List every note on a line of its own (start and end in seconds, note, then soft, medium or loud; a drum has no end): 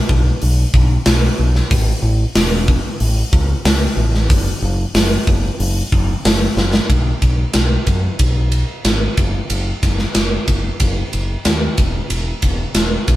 0.09 0.30 B1 medium
0.09 kick medium
0.42 0.63 B1 medium
0.42 open hi-hat medium
0.73 0.95 B1 medium
0.73 kick medium
1.06 1.27 B1 medium
1.06 snare loud
1.06 open hi-hat medium
1.39 1.60 B1 medium
1.55 snare soft
1.71 1.92 A1 loud
1.71 kick loud
1.71 open hi-hat medium
2.02 2.24 A1 medium
2.35 2.78 E1 medium
2.35 snare loud
2.35 open hi-hat medium
2.68 kick medium
3.00 3.22 A1 medium
3.00 open hi-hat medium
3.32 3.54 C#2 medium
3.32 kick medium
3.65 3.86 C#2 medium
3.65 snare loud
3.65 open hi-hat medium
3.96 4.30 A1 medium
4.15 snare soft
4.30 4.51 F#1 loud
4.30 kick loud
4.30 open hi-hat medium
4.62 4.83 F#1 medium
4.94 5.16 F#1 medium
4.94 snare loud
4.94 open hi-hat medium
5.27 5.48 F#1 medium
5.27 kick medium
5.60 5.81 F#1 medium
5.60 open hi-hat medium
5.92 6.13 F#1 medium
5.92 kick medium
6.25 6.46 F#1 medium
6.25 snare loud
6.25 open hi-hat medium
6.57 6.78 F#1 medium
6.57 snare medium
6.74 snare medium
6.89 7.11 B1 medium
6.89 kick medium
6.89 ride medium
7.21 7.43 B1 medium
7.21 kick medium
7.21 ride medium
7.53 7.76 B1 medium
7.53 snare loud
7.53 ride medium
7.86 8.08 F#2 medium
7.86 kick medium
7.86 ride medium
8.19 8.62 B1 medium
8.19 kick loud
8.19 ride medium
8.52 ride medium
8.85 9.06 G#1 medium
8.85 snare loud
8.85 ride medium
9.17 9.39 F#1 medium
9.17 kick medium
9.17 ride medium
9.50 9.71 F#1 medium
9.50 ride medium
9.83 10.04 F#1 medium
9.83 kick medium
9.83 snare soft
9.83 ride medium
9.99 snare soft
10.15 10.36 F#1 medium
10.15 snare loud
10.15 ride medium
10.48 10.69 F#1 medium
10.48 kick medium
10.48 ride medium
10.80 11.02 F#1 medium
10.80 kick medium
10.80 ride medium
11.13 11.35 F#1 medium
11.13 ride medium
11.45 11.67 D#2 medium
11.45 snare loud
11.45 ride medium
11.78 11.99 E1 medium
11.78 kick loud
11.78 ride medium
12.10 12.31 E1 medium
12.10 ride medium
12.42 12.64 E1 medium
12.42 kick medium
12.42 ride medium
12.74 12.96 E1 medium
12.74 snare loud
12.74 ride medium
13.08 13.16 B1 medium
13.08 kick medium
13.08 ride medium